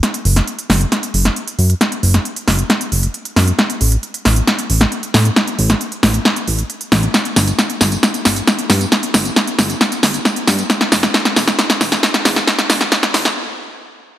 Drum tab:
HH |xxoxxxoxxxoxxxox|xxoxxxoxxxoxxxox|xxoxxxoxxxoxxxox|xxoxxxoxxxoxxxox|
TB |----------------|----------------|----------------|----------------|
SD |o--o--o-o--o----|o--o--o-o-----o-|o-----o-o--o--o-|o--o--o-o-----o-|

HH |xxoxxxoxxxoxxxox|xxoxxxoxxxoxxxox|xxoxxxoxxxoxxxox|xxoxxxox--------|
TB |x-xxx-xxxxxxx-xx|x-xxx-xxxxxxx-xx|x-xxx-xxxxxxx-xx|x-xxx-xx--------|
SD |o-o-o-o-o-o-o-o-|o-o-o-o-o-o-o-o-|oooooooooooooooo|oooooooo--------|